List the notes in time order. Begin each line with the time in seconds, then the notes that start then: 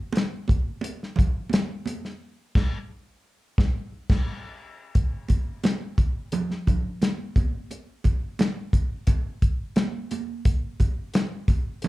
0.13 closed hi-hat, high conga
0.17 snare
0.48 kick, closed hi-hat, muted conga
0.81 closed hi-hat, muted conga
1.03 snare
1.16 kick, closed hi-hat, low conga
1.50 closed hi-hat, high conga
1.54 snare
1.86 closed hi-hat, high conga
2.05 snare
2.55 kick, snare, crash
3.58 kick, snare
4.10 kick, snare, crash
4.95 kick, closed hi-hat
5.28 kick, closed hi-hat, muted conga
5.64 snare, closed hi-hat, high conga
5.98 kick, closed hi-hat, muted conga
6.32 closed hi-hat, muted conga, low conga
6.51 snare
6.67 kick, closed hi-hat, low conga
7.02 snare, closed hi-hat, high conga
7.36 kick, closed hi-hat, high conga
7.71 closed hi-hat, muted conga
8.04 kick, closed hi-hat, muted conga
8.39 snare, closed hi-hat, high conga
8.73 kick, closed hi-hat, muted conga
9.07 kick, closed hi-hat, muted conga
9.42 kick, closed hi-hat
9.76 snare, closed hi-hat, high conga
10.11 closed hi-hat, high conga
10.45 kick, closed hi-hat
10.80 kick, closed hi-hat, muted conga
11.14 snare, closed hi-hat, high conga
11.48 kick, closed hi-hat, muted conga
11.82 closed hi-hat, muted conga, low conga